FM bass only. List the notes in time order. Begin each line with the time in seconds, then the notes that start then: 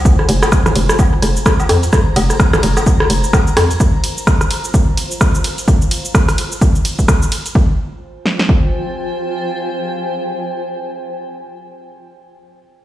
0.29 F1
0.76 F1
1.22 F1
1.69 F2
2.16 F1
2.63 F1
3.10 F1
3.57 F2